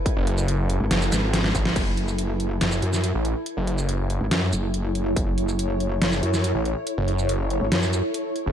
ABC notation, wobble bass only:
X:1
M:4/4
L:1/16
Q:1/4=141
K:F#m
V:1 name="Wobble bass" clef=bass
z6 z G,,, z2 G,,,4 z2 | F,,,8 z2 F,,3 z3 | z6 z G,,, z2 F,,,6 | F,,,8 z2 F,,3 z3 |
z6 z G,,, F,,3 z4 z |]